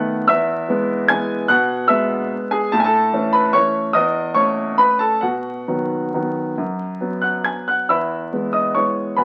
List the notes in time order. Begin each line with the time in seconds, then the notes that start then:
Already playing: D#3 A3 B3 F#5 F#6
0.28 E2 E5 E6
0.69 E3 G#3 B3
1.08 E3 G#3 B3 G#5 G#6
1.48 B2 F#5 F#6
1.88 G#3 B3 E5 E6
2.51 G#4 G#5
2.72 A2 A5
2.80 G#5
2.84 A4 A5
3.13 E3 A3 C#4
3.33 B4 B5
3.53 E3 A3 C#4 C#5 C#6
3.93 E2 D#5 D#6
4.35 A3 C#4 C#5 C#6
4.78 B4 B5
4.99 A4 A5
5.21 B2 F#4 F#5
5.68 D#3 F#3 B3
6.14 D#3 F#3 B3
6.58 F#2
7.01 F#3 B3
7.22 F#5 F#6
7.44 G#5 G#6
7.68 F#5 F#6
7.89 E2 E5 B5 E6
8.32 E3 G#3 B3
8.53 D#5 D#6
8.75 E3 G#3 B3 C#5 C#6
9.16 B2 B4 G#5 B5